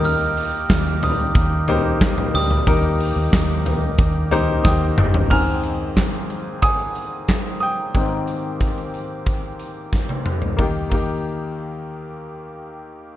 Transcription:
<<
  \new Staff \with { instrumentName = "Glockenspiel" } { \time 4/4 \key ees \major \tempo 4 = 91 f'''4. ees'''2 ees'''8~ | ees'''2. r4 | r1 | r1 |
r1 | }
  \new Staff \with { instrumentName = "Grand piano" } { \time 4/4 \key ees \major << { r1 | r2. <g'' ees'''>4 | <aes'' f'''>4. r8 <aes'' ees'''>4. <g'' ees'''>8~ | <g'' ees'''>2.~ <g'' ees'''>8 r8 |
r1 | } \\ { <bes ees' g' bes'>4. r4 <bes ees' g' c''>4. | <bes ees' g' bes'>2 r8 <bes ees' g' c''>4. | r1 | r1 |
<bes ees' g'>8 <bes ees' g'>2.~ <bes ees' g'>8 | } >> }
  \new Staff \with { instrumentName = "Grand piano" } { \clef bass \time 4/4 \key ees \major ees4 r2 r8 g8~ | g4 r2. | <aes, ees c'>1 | <aes, ees c'>1 |
ees,8 ees,2.~ ees,8 | }
  \new Staff \with { instrumentName = "Harmonium" } { \time 4/4 \key ees \major g'1~ | g'1 | aes'1 | g'1 |
<ees bes g'>1 | }
  \new Staff \with { instrumentName = "Harmonium" } { \time 4/4 \key ees \major <bes ees'>1~ | <bes ees'>1 | <bes c'>1~ | <bes c'>1 |
r1 | }
  \new Staff \with { instrumentName = "Fingered electric bass" } { \clef bass \time 4/4 \key ees \major ees,4 ees,4 ees,4. d,8 | ees,8. ees,16 ees,4 ees,4 ees,8 g,,8 | r1 | r1 |
r1 | }
  \new DrumStaff \with { instrumentName = "Drums" } \drummode { \time 4/4 <hho hhp>8 <hho hhp>8 <hc hho hhp bd sn>16 hho16 <hho hhp tomfh>16 hhp16 <hho hhp bd>8 <hho hhp tomfh>8 <hc hho hhp bd sn>16 tomfh16 <hho hhp>16 tomfh16 | <hho hhp bd>8 <hho hhp>8 <hc hho hhp bd sn>8 <hho hhp tomfh>8 <hho hhp bd>8 <hho hhp tomfh>8 <bd sn>8 toml16 tomfh16 | <cymc bd>8 hh8 <hc hh bd sn>16 hh16 hh8 <hh bd>16 hh16 hh8 <hc hh bd sn>8 hh8 | <hh bd>8 hh8 <hh bd>16 hh16 hh8 <hh bd>8 hh8 <bd sn>16 tommh16 toml16 tomfh16 |
<bd cymr>8 <bd cymr>8 r4 r4 r4 | }
>>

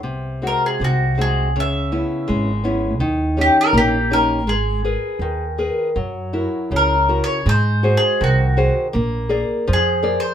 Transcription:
<<
  \new Staff \with { instrumentName = "Mandolin" } { \time 2/4 \key fis \mixolydian \tempo 4 = 81 r8 ais'16 gis'16 fis'8 gis'8 | e''4 r4 | r8 g'16 ais'16 g'8 ais'8 | gis'4. r8 |
r4 \tuplet 3/2 { ais'4 cis''8 } | \tuplet 3/2 { bis'4 gis'8 } fis'8. r16 | r4 \tuplet 3/2 { gis'4 bis'8 } | }
  \new Staff \with { instrumentName = "Nylon-string guitar" } { \time 2/4 \key fis \mixolydian bis,8 <gis bis fis'>8 bis,8 <gis bis fis'>8 | cis8 <b cis' e'>8 gis8 <b cis' e'>8 | dis8 <cis' dis' g'>8 ais8 <cis' dis' g'>8 | gis8 <gis' ais' b'>8 dis8 <gis' ais' b'>8 |
fis8 <e' fis' ais'>8 cis8 <e' fis' ais'>8 | gis8 <fis' gis' bis'>8 dis8 <fis' gis' bis'>8 | ais8 <gis' ais' d''>8 eis8 <gis' ais' d''>8 | }
  \new Staff \with { instrumentName = "Upright bass" } { \clef bass \time 2/4 \key fis \mixolydian bis,,4 bis,,4 | cis,4 gis,,4 | dis,4 ais,,4 | gis,,4 dis,4 |
fis,4 cis,4 | gis,4 bis,,4 | ais,,4 eis,4 | }
>>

